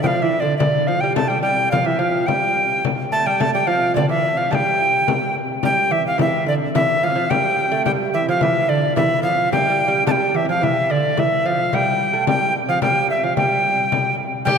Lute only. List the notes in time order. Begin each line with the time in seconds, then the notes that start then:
0.04 F3
0.22 E3
0.42 D3
0.60 D3
0.88 F3
1.03 G3
1.16 A3
1.30 G3
1.43 G3
1.72 F3
1.84 E3
1.99 F3
2.28 G3
3.13 A3
3.27 G3
3.40 A3
3.55 G3
3.67 F3
3.94 D3
4.09 E3
4.37 F3
4.51 G3
5.63 G3
5.91 E3
6.18 E3
6.46 D3
6.75 E3
7.03 F3
7.10 F3
7.16 F3
7.30 G3
7.72 A3
7.86 G3
8.14 E3
8.29 F3
8.43 E3
8.69 D3
8.96 E3
9.23 F3
9.53 G3
9.70 G3
9.88 G3
10.07 G3
10.34 E3
10.45 F3 G3
10.61 E3
10.90 D3
11.17 E3
11.46 F3
11.74 G3
12.13 A3
12.28 G3
12.69 F3
12.82 G3
13.23 F3
13.37 G3
14.45 G3